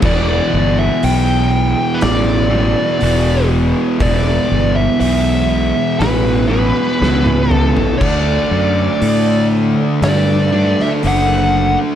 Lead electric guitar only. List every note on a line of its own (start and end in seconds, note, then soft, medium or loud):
0.06 0.79 D5 loud
0.79 1.04 E5 medium
1.04 1.98 G5 loud
1.94 2.02 B4 medium
2.03 3.48 D5 medium
4.02 4.76 D5 loud
4.76 4.99 E5 medium
5.01 6.04 E5 loud
5.99 6.47 B4 medium
6.48 7.53 B4 loud
7.53 8.05 A4 loud
7.98 9.47 D5 medium
10.04 10.81 D5 medium
10.83 10.89 E5 loud
11.07 11.77 F#5 medium